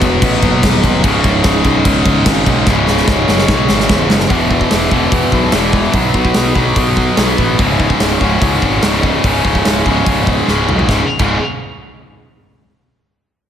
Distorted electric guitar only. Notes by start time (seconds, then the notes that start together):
Already playing: B2 F#3 B3
1.03 C#2 G#2 C#3
2.67 C#2 G#2 C#3
4.30 E2 B2 E3
4.92 E2 B2 E3
5.53 E2 B2 E3
5.93 B2 F#3 B3
6.55 B2 F#3 B3
7.17 B2 F#3 B3
7.59 C#2 G#2 C#3
8.21 C#2 G#2 C#3
8.83 C#2 G#2 C#3
9.24 C#2 G#2 C#3
9.87 C#2 G#2 C#3
10.47 C#2 G#2 C#3
10.89 C#2 G#2 C#3
11.20 C#2 G#2 C#3